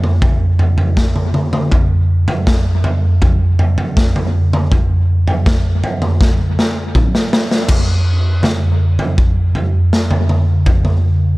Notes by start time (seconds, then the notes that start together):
0.04 mid tom
0.22 kick, floor tom
0.59 floor tom
0.78 floor tom
0.97 kick, snare
1.16 mid tom
1.34 mid tom
1.53 mid tom
1.72 kick, floor tom
2.28 floor tom
2.47 kick, snare
2.84 floor tom
3.22 kick, floor tom
3.59 floor tom
3.78 floor tom
3.97 kick, snare
4.16 floor tom, mid tom
4.53 mid tom
4.72 kick, floor tom
5.27 floor tom
5.46 kick, snare
5.84 floor tom
6.02 mid tom
6.21 kick, snare
6.59 snare
6.95 kick, mid tom
7.15 snare
7.33 snare
7.51 snare
7.68 kick, floor tom, crash
8.43 snare, floor tom, mid tom
8.99 floor tom
9.18 kick
9.55 floor tom
9.93 snare
10.11 floor tom, mid tom
10.29 mid tom
10.66 kick, floor tom
10.85 mid tom